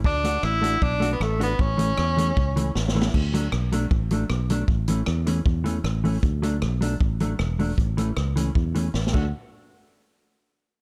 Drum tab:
CC |------------------------|------------------------|x-----------------------|------------------------|
HH |---x-----x-----x-----x--|---x-----x-----x--------|---x-----x-----x-----x--|---x-----x-----x-----o--|
SD |------r-----------r-----|------r-----------o-o-o-|------r-----------r-----|------r-----------r-----|
BD |o-----------o-----------|o-----------o-----------|o-----------o-----------|o-----------o-----------|

CC |------------------------|---------------------x--|------------------------|
HH |p--x-----x-----x-----o--|p--x-----x-----x--------|------------------------|
SD |------r-----------r-----|------r-----------o-o---|------------------------|
BD |o-----------o-----------|o-----------o--------o--|------------------------|